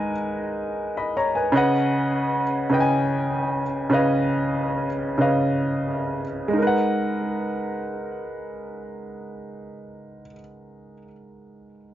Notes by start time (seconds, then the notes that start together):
Already playing: G#3 D#4 A#4 B4 F#5 G#5
0.97 D#5 B5
1.17 C#5 A#5
1.35 B4 G#5
1.52 C#3 C#4 B4 D#5
1.57 F#5
2.70 C#3 C#4 B4 D#5
2.74 G5
2.80 G#5
3.90 C#3 C#4 B4 D#5
3.94 F5
5.18 C#3 C#4 B4 D#5 F5
6.48 G#3
6.53 D#4
6.58 A#4
6.62 B4
6.67 F#5